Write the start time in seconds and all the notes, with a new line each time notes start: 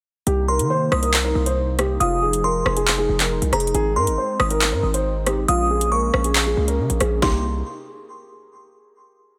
0.27 C2 C3 A#3 D#4 G4, closed hi-hat
0.48 A#4 C6
0.59 D#3, closed hi-hat
0.70 C5
0.92 C2 D#6, cross-stick
1.03 A#4, closed hi-hat
1.14 clap, closed hi-hat
1.25 A#4
1.35 C2
1.46 C5, closed hi-hat
1.79 G4, cross-stick, closed hi-hat
2.00 F1 F3 D#4 F4 G#4 D#6, closed hi-hat
2.22 G#4
2.33 closed hi-hat
2.44 A#4 C6
2.66 F1, cross-stick
2.77 G#4, closed hi-hat
2.87 clap
2.98 G#4
3.09 F1
3.20 A#4, clap, closed hi-hat
3.42 C2, closed hi-hat
3.53 F1 G#4 A#5, cross-stick, closed hi-hat
3.60 closed hi-hat
3.67 closed hi-hat
3.74 G#1 G#3 C4 G#4, closed hi-hat
3.96 G#2 A#4 C6
4.07 G#1, closed hi-hat
4.18 C5
4.40 G#1 D#6, cross-stick
4.50 A#4, closed hi-hat
4.61 clap, closed hi-hat
4.72 G#2 A#4
4.83 G#1
4.94 C5, closed hi-hat
5.26 G4, cross-stick, closed hi-hat
5.48 A#1 A#3 C#4 F4 D#6, closed hi-hat
5.70 G#4
5.81 closed hi-hat
5.92 A#4 C#6
6.14 A#1, cross-stick
6.24 G#4, closed hi-hat
6.35 clap
6.46 G#4
6.57 C#2
6.68 A#4, closed hi-hat
6.79 C#3
6.90 A#1, closed hi-hat
7.00 A#1 G#4, cross-stick, closed hi-hat
7.22 C2 C3 A#3 D#4 G4 C6, kick, snare